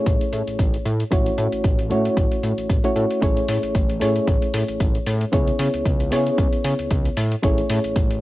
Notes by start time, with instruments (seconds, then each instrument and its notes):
Already playing: reed electric piano A3 C#4 E4 G#4 C#5
0.06 analog synth bass A1, kick, closed hi-hat
0.21 closed hi-hat
0.33 analog synth bass A2, closed hi-hat
0.47 analog synth bass A1, closed hi-hat
0.59 analog synth bass A1, kick, closed hi-hat
0.74 closed hi-hat
0.85 analog synth bass A2, closed hi-hat
1.00 closed hi-hat
1.11 analog synth bass A1, reed electric piano A3 C#4 E4 F#4 C#5, kick, closed hi-hat
1.26 closed hi-hat
1.38 analog synth bass A2, closed hi-hat
1.52 analog synth bass A1, closed hi-hat
1.64 analog synth bass A1, kick, closed hi-hat
1.79 closed hi-hat
1.90 analog synth bass A2, reed electric piano A3 C#4 E4 F#4 C#5, closed hi-hat
2.05 closed hi-hat
2.17 analog synth bass A1, kick, closed hi-hat
2.32 closed hi-hat
2.43 analog synth bass A2, closed hi-hat
2.58 analog synth bass A1, closed hi-hat
2.70 analog synth bass A1, kick, closed hi-hat
2.84 reed electric piano A3 C#4 E4 F#4 C#5, closed hi-hat
2.96 analog synth bass A2, closed hi-hat
3.11 closed hi-hat
3.21 analog synth bass A1, reed electric piano A3 C#4 E4 G#4 C#5, kick, closed hi-hat
3.37 closed hi-hat
3.48 analog synth bass A2, open hi-hat
3.63 analog synth bass A1, closed hi-hat
3.75 analog synth bass A1, kick, closed hi-hat
3.89 closed hi-hat
4.00 analog synth bass A2, reed electric piano A3 C#4 E4 G#4 C#5, open hi-hat
4.16 closed hi-hat
4.27 analog synth bass A1, kick, closed hi-hat
4.42 closed hi-hat
4.54 analog synth bass A2, open hi-hat
4.68 analog synth bass A1, closed hi-hat
4.80 analog synth bass A1, kick, closed hi-hat
4.95 closed hi-hat
5.06 analog synth bass A2, open hi-hat
5.21 closed hi-hat
5.32 analog synth bass C#2, reed electric piano B3 C#4 E4 G#4 C#5, kick, closed hi-hat
5.47 closed hi-hat
5.59 analog synth bass C#3, open hi-hat
5.74 analog synth bass C#2, closed hi-hat
5.85 analog synth bass C#2, kick, closed hi-hat
6.00 closed hi-hat
6.11 analog synth bass C#3, reed electric piano B3 C#4 E4 G#4 C#5, open hi-hat
6.26 closed hi-hat
6.38 analog synth bass C#2, kick, closed hi-hat
6.53 closed hi-hat
6.64 analog synth bass C#3, open hi-hat
6.79 analog synth bass C#2, closed hi-hat
6.91 analog synth bass C#2, kick, closed hi-hat
7.05 closed hi-hat
7.17 analog synth bass A2, open hi-hat
7.32 closed hi-hat
7.42 analog synth bass A1, reed electric piano A3 C#4 E4 G#4 C#5, kick, closed hi-hat
7.58 closed hi-hat
7.70 analog synth bass A2, open hi-hat
7.84 analog synth bass A1, closed hi-hat
7.96 analog synth bass A1, kick, closed hi-hat
8.11 closed hi-hat